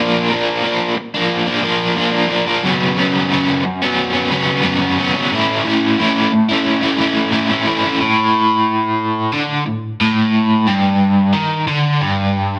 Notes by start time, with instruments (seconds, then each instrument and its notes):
Already playing: overdriven electric guitar A#2 F3
0.00 overdriven electric guitar A#3 D4
0.30 overdriven electric guitar A#2 F3 A#3 D4
0.63 overdriven electric guitar A#2 F3 A#3 D4
0.96 muted overdriven electric guitar stroke
1.14 overdriven electric guitar F3 A#3 D4
1.46 overdriven electric guitar F3 A#3 D4
1.62 overdriven electric guitar A#2 F3 A#3 D4
1.96 overdriven electric guitar A#2 F3 A#3 D4
2.12 overdriven electric guitar F3 A#3 D4
2.28 overdriven electric guitar A#2 F3 A#3 D4
2.46 overdriven electric guitar F3 A#3 D4
2.63 overdriven electric guitar F#2 C#3 F#3 B3 C#4
2.96 overdriven electric guitar C#3 F#3 B3 C#4
3.31 overdriven electric guitar F#2 C#3 F#3 B3 C#4
3.64 muted overdriven electric guitar stroke
3.82 overdriven electric guitar F#3 B3 C#4
4.14 overdriven electric guitar F#3 B3 C#4
4.30 overdriven electric guitar C#3 F#3 B3 C#4
4.63 overdriven electric guitar F#2 C#3 F#3 B3 C#4
4.81 overdriven electric guitar F#3 B3 C#4
4.98 overdriven electric guitar C#3 F#3 B3 C#4
5.14 overdriven electric guitar F#3 B3 C#4
5.32 overdriven electric guitar A2 E3 A3 C#4 E4
5.64 overdriven electric guitar E3 A3 C#4 E4
5.99 overdriven electric guitar A2 E3 A3 C#4 E4
6.33 muted overdriven electric guitar stroke
6.49 overdriven electric guitar A3 C#4 E4
6.82 overdriven electric guitar A3 C#4 E4
6.98 overdriven electric guitar E3 A3 C#4 E4
7.31 overdriven electric guitar A2 E3 A3 C#4 E4
7.49 overdriven electric guitar A3 C#4 E4
7.66 overdriven electric guitar E3 A3 C#4 E4
7.84 overdriven electric guitar A3 C#4 E4
8.01 overdriven electric guitar A2
9.33 overdriven electric guitar D3
9.66 overdriven electric guitar A2
10.01 overdriven electric guitar A2
10.67 overdriven electric guitar G2
11.34 overdriven electric guitar D#3
11.67 overdriven electric guitar D3
12.01 overdriven electric guitar G2